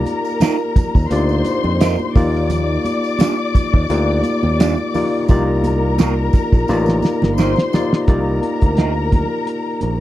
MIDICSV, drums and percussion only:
0, 0, Header, 1, 2, 480
1, 0, Start_track
1, 0, Key_signature, -3, "minor"
1, 0, Tempo, 696864
1, 1727, Time_signature, 4, 2, 24, 8
1, 6890, End_track
2, 0, Start_track
2, 0, Title_t, "Drums"
2, 39, Note_on_c, 9, 63, 71
2, 44, Note_on_c, 9, 42, 68
2, 45, Note_on_c, 9, 54, 42
2, 108, Note_off_c, 9, 63, 0
2, 113, Note_off_c, 9, 42, 0
2, 114, Note_off_c, 9, 54, 0
2, 170, Note_on_c, 9, 54, 36
2, 238, Note_off_c, 9, 54, 0
2, 278, Note_on_c, 9, 62, 36
2, 278, Note_on_c, 9, 63, 80
2, 279, Note_on_c, 9, 42, 76
2, 283, Note_on_c, 9, 54, 97
2, 290, Note_on_c, 9, 38, 115
2, 347, Note_off_c, 9, 62, 0
2, 347, Note_off_c, 9, 63, 0
2, 348, Note_off_c, 9, 42, 0
2, 352, Note_off_c, 9, 54, 0
2, 358, Note_off_c, 9, 38, 0
2, 523, Note_on_c, 9, 36, 102
2, 524, Note_on_c, 9, 42, 69
2, 524, Note_on_c, 9, 54, 47
2, 527, Note_on_c, 9, 62, 30
2, 527, Note_on_c, 9, 63, 51
2, 527, Note_on_c, 9, 64, 67
2, 592, Note_off_c, 9, 36, 0
2, 593, Note_off_c, 9, 42, 0
2, 593, Note_off_c, 9, 54, 0
2, 596, Note_off_c, 9, 62, 0
2, 596, Note_off_c, 9, 63, 0
2, 596, Note_off_c, 9, 64, 0
2, 653, Note_on_c, 9, 36, 98
2, 659, Note_on_c, 9, 54, 30
2, 722, Note_off_c, 9, 36, 0
2, 728, Note_off_c, 9, 54, 0
2, 761, Note_on_c, 9, 62, 26
2, 762, Note_on_c, 9, 42, 88
2, 764, Note_on_c, 9, 54, 45
2, 830, Note_off_c, 9, 62, 0
2, 831, Note_off_c, 9, 42, 0
2, 833, Note_off_c, 9, 54, 0
2, 886, Note_on_c, 9, 54, 29
2, 955, Note_off_c, 9, 54, 0
2, 996, Note_on_c, 9, 42, 76
2, 998, Note_on_c, 9, 62, 31
2, 998, Note_on_c, 9, 63, 66
2, 1004, Note_on_c, 9, 54, 46
2, 1065, Note_off_c, 9, 42, 0
2, 1066, Note_off_c, 9, 62, 0
2, 1066, Note_off_c, 9, 63, 0
2, 1073, Note_off_c, 9, 54, 0
2, 1130, Note_on_c, 9, 63, 81
2, 1199, Note_off_c, 9, 63, 0
2, 1242, Note_on_c, 9, 62, 32
2, 1244, Note_on_c, 9, 42, 100
2, 1246, Note_on_c, 9, 54, 89
2, 1249, Note_on_c, 9, 38, 110
2, 1311, Note_off_c, 9, 62, 0
2, 1313, Note_off_c, 9, 42, 0
2, 1315, Note_off_c, 9, 54, 0
2, 1318, Note_off_c, 9, 38, 0
2, 1373, Note_on_c, 9, 63, 63
2, 1442, Note_off_c, 9, 63, 0
2, 1484, Note_on_c, 9, 54, 51
2, 1485, Note_on_c, 9, 36, 108
2, 1486, Note_on_c, 9, 46, 67
2, 1486, Note_on_c, 9, 62, 28
2, 1486, Note_on_c, 9, 64, 62
2, 1491, Note_on_c, 9, 38, 34
2, 1553, Note_off_c, 9, 54, 0
2, 1554, Note_off_c, 9, 36, 0
2, 1555, Note_off_c, 9, 46, 0
2, 1555, Note_off_c, 9, 62, 0
2, 1555, Note_off_c, 9, 64, 0
2, 1559, Note_off_c, 9, 38, 0
2, 1621, Note_on_c, 9, 38, 36
2, 1690, Note_off_c, 9, 38, 0
2, 1720, Note_on_c, 9, 54, 51
2, 1720, Note_on_c, 9, 62, 34
2, 1720, Note_on_c, 9, 64, 73
2, 1725, Note_on_c, 9, 42, 85
2, 1789, Note_off_c, 9, 54, 0
2, 1789, Note_off_c, 9, 62, 0
2, 1789, Note_off_c, 9, 64, 0
2, 1793, Note_off_c, 9, 42, 0
2, 1961, Note_on_c, 9, 63, 74
2, 1966, Note_on_c, 9, 54, 43
2, 1967, Note_on_c, 9, 42, 69
2, 2030, Note_off_c, 9, 63, 0
2, 2035, Note_off_c, 9, 42, 0
2, 2035, Note_off_c, 9, 54, 0
2, 2093, Note_on_c, 9, 54, 36
2, 2161, Note_off_c, 9, 54, 0
2, 2196, Note_on_c, 9, 62, 39
2, 2196, Note_on_c, 9, 63, 83
2, 2202, Note_on_c, 9, 42, 75
2, 2203, Note_on_c, 9, 54, 95
2, 2212, Note_on_c, 9, 38, 108
2, 2265, Note_off_c, 9, 62, 0
2, 2265, Note_off_c, 9, 63, 0
2, 2270, Note_off_c, 9, 42, 0
2, 2272, Note_off_c, 9, 54, 0
2, 2281, Note_off_c, 9, 38, 0
2, 2444, Note_on_c, 9, 36, 92
2, 2446, Note_on_c, 9, 42, 75
2, 2447, Note_on_c, 9, 54, 45
2, 2449, Note_on_c, 9, 62, 30
2, 2449, Note_on_c, 9, 63, 49
2, 2449, Note_on_c, 9, 64, 64
2, 2513, Note_off_c, 9, 36, 0
2, 2515, Note_off_c, 9, 42, 0
2, 2516, Note_off_c, 9, 54, 0
2, 2518, Note_off_c, 9, 62, 0
2, 2518, Note_off_c, 9, 63, 0
2, 2518, Note_off_c, 9, 64, 0
2, 2574, Note_on_c, 9, 36, 94
2, 2643, Note_off_c, 9, 36, 0
2, 2678, Note_on_c, 9, 62, 25
2, 2685, Note_on_c, 9, 54, 46
2, 2686, Note_on_c, 9, 42, 89
2, 2747, Note_off_c, 9, 62, 0
2, 2754, Note_off_c, 9, 54, 0
2, 2755, Note_off_c, 9, 42, 0
2, 2916, Note_on_c, 9, 63, 66
2, 2918, Note_on_c, 9, 42, 74
2, 2925, Note_on_c, 9, 54, 44
2, 2985, Note_off_c, 9, 63, 0
2, 2987, Note_off_c, 9, 42, 0
2, 2994, Note_off_c, 9, 54, 0
2, 3051, Note_on_c, 9, 63, 86
2, 3120, Note_off_c, 9, 63, 0
2, 3164, Note_on_c, 9, 62, 30
2, 3169, Note_on_c, 9, 42, 93
2, 3169, Note_on_c, 9, 54, 91
2, 3174, Note_on_c, 9, 38, 115
2, 3233, Note_off_c, 9, 62, 0
2, 3238, Note_off_c, 9, 42, 0
2, 3238, Note_off_c, 9, 54, 0
2, 3243, Note_off_c, 9, 38, 0
2, 3292, Note_on_c, 9, 63, 68
2, 3361, Note_off_c, 9, 63, 0
2, 3405, Note_on_c, 9, 54, 54
2, 3409, Note_on_c, 9, 46, 67
2, 3410, Note_on_c, 9, 62, 29
2, 3410, Note_on_c, 9, 64, 62
2, 3413, Note_on_c, 9, 38, 38
2, 3474, Note_off_c, 9, 54, 0
2, 3478, Note_off_c, 9, 46, 0
2, 3479, Note_off_c, 9, 62, 0
2, 3479, Note_off_c, 9, 64, 0
2, 3482, Note_off_c, 9, 38, 0
2, 3640, Note_on_c, 9, 54, 55
2, 3642, Note_on_c, 9, 62, 35
2, 3642, Note_on_c, 9, 64, 75
2, 3646, Note_on_c, 9, 36, 110
2, 3649, Note_on_c, 9, 42, 83
2, 3708, Note_off_c, 9, 54, 0
2, 3711, Note_off_c, 9, 62, 0
2, 3711, Note_off_c, 9, 64, 0
2, 3715, Note_off_c, 9, 36, 0
2, 3718, Note_off_c, 9, 42, 0
2, 3883, Note_on_c, 9, 62, 31
2, 3883, Note_on_c, 9, 63, 77
2, 3884, Note_on_c, 9, 54, 44
2, 3888, Note_on_c, 9, 42, 67
2, 3952, Note_off_c, 9, 62, 0
2, 3952, Note_off_c, 9, 63, 0
2, 3953, Note_off_c, 9, 54, 0
2, 3957, Note_off_c, 9, 42, 0
2, 4122, Note_on_c, 9, 42, 74
2, 4122, Note_on_c, 9, 62, 40
2, 4122, Note_on_c, 9, 63, 78
2, 4123, Note_on_c, 9, 54, 96
2, 4132, Note_on_c, 9, 38, 114
2, 4190, Note_off_c, 9, 62, 0
2, 4190, Note_off_c, 9, 63, 0
2, 4191, Note_off_c, 9, 42, 0
2, 4192, Note_off_c, 9, 54, 0
2, 4201, Note_off_c, 9, 38, 0
2, 4359, Note_on_c, 9, 54, 48
2, 4364, Note_on_c, 9, 36, 103
2, 4365, Note_on_c, 9, 63, 48
2, 4365, Note_on_c, 9, 64, 60
2, 4367, Note_on_c, 9, 42, 70
2, 4428, Note_off_c, 9, 54, 0
2, 4433, Note_off_c, 9, 36, 0
2, 4434, Note_off_c, 9, 63, 0
2, 4434, Note_off_c, 9, 64, 0
2, 4436, Note_off_c, 9, 42, 0
2, 4494, Note_on_c, 9, 36, 102
2, 4496, Note_on_c, 9, 54, 30
2, 4563, Note_off_c, 9, 36, 0
2, 4565, Note_off_c, 9, 54, 0
2, 4601, Note_on_c, 9, 54, 50
2, 4612, Note_on_c, 9, 38, 63
2, 4670, Note_off_c, 9, 54, 0
2, 4681, Note_off_c, 9, 38, 0
2, 4724, Note_on_c, 9, 54, 32
2, 4743, Note_on_c, 9, 38, 60
2, 4793, Note_off_c, 9, 54, 0
2, 4812, Note_off_c, 9, 38, 0
2, 4838, Note_on_c, 9, 62, 33
2, 4838, Note_on_c, 9, 63, 66
2, 4839, Note_on_c, 9, 54, 41
2, 4854, Note_on_c, 9, 38, 74
2, 4906, Note_off_c, 9, 62, 0
2, 4906, Note_off_c, 9, 63, 0
2, 4908, Note_off_c, 9, 54, 0
2, 4923, Note_off_c, 9, 38, 0
2, 4974, Note_on_c, 9, 63, 87
2, 4983, Note_on_c, 9, 38, 70
2, 5042, Note_off_c, 9, 63, 0
2, 5051, Note_off_c, 9, 38, 0
2, 5081, Note_on_c, 9, 54, 85
2, 5092, Note_on_c, 9, 38, 92
2, 5150, Note_off_c, 9, 54, 0
2, 5161, Note_off_c, 9, 38, 0
2, 5206, Note_on_c, 9, 54, 26
2, 5217, Note_on_c, 9, 63, 66
2, 5223, Note_on_c, 9, 38, 88
2, 5275, Note_off_c, 9, 54, 0
2, 5286, Note_off_c, 9, 63, 0
2, 5292, Note_off_c, 9, 38, 0
2, 5325, Note_on_c, 9, 54, 48
2, 5331, Note_on_c, 9, 38, 98
2, 5333, Note_on_c, 9, 62, 30
2, 5333, Note_on_c, 9, 64, 58
2, 5393, Note_off_c, 9, 54, 0
2, 5400, Note_off_c, 9, 38, 0
2, 5402, Note_off_c, 9, 62, 0
2, 5402, Note_off_c, 9, 64, 0
2, 5460, Note_on_c, 9, 38, 95
2, 5529, Note_off_c, 9, 38, 0
2, 5563, Note_on_c, 9, 42, 78
2, 5565, Note_on_c, 9, 36, 102
2, 5565, Note_on_c, 9, 62, 31
2, 5565, Note_on_c, 9, 64, 68
2, 5632, Note_off_c, 9, 42, 0
2, 5634, Note_off_c, 9, 36, 0
2, 5634, Note_off_c, 9, 62, 0
2, 5634, Note_off_c, 9, 64, 0
2, 5804, Note_on_c, 9, 63, 61
2, 5806, Note_on_c, 9, 42, 63
2, 5873, Note_off_c, 9, 63, 0
2, 5875, Note_off_c, 9, 42, 0
2, 5934, Note_on_c, 9, 42, 51
2, 5939, Note_on_c, 9, 36, 82
2, 6003, Note_off_c, 9, 42, 0
2, 6008, Note_off_c, 9, 36, 0
2, 6040, Note_on_c, 9, 42, 68
2, 6042, Note_on_c, 9, 63, 76
2, 6050, Note_on_c, 9, 38, 102
2, 6108, Note_off_c, 9, 42, 0
2, 6111, Note_off_c, 9, 63, 0
2, 6119, Note_off_c, 9, 38, 0
2, 6283, Note_on_c, 9, 42, 70
2, 6284, Note_on_c, 9, 36, 85
2, 6292, Note_on_c, 9, 62, 30
2, 6292, Note_on_c, 9, 63, 44
2, 6292, Note_on_c, 9, 64, 63
2, 6352, Note_off_c, 9, 42, 0
2, 6353, Note_off_c, 9, 36, 0
2, 6361, Note_off_c, 9, 62, 0
2, 6361, Note_off_c, 9, 63, 0
2, 6361, Note_off_c, 9, 64, 0
2, 6519, Note_on_c, 9, 62, 26
2, 6524, Note_on_c, 9, 42, 83
2, 6588, Note_off_c, 9, 62, 0
2, 6593, Note_off_c, 9, 42, 0
2, 6756, Note_on_c, 9, 62, 29
2, 6756, Note_on_c, 9, 63, 60
2, 6758, Note_on_c, 9, 42, 66
2, 6825, Note_off_c, 9, 62, 0
2, 6825, Note_off_c, 9, 63, 0
2, 6827, Note_off_c, 9, 42, 0
2, 6890, End_track
0, 0, End_of_file